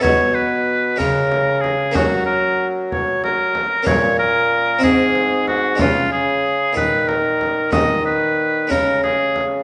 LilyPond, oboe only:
\new Staff \with { instrumentName = "Oboe" } { \time 6/8 \key cis \mixolydian \tempo 4. = 62 cis''8 b'4 ais'4 gis'8 | fis'8 ais'8 r8 cis''8 ais'4 | cis''8 ais'4 gis'4 fis'8 | eis'8 gis'4 b'8 ais'4 |
dis''8 b'4 ais'8 gis'8 r8 | }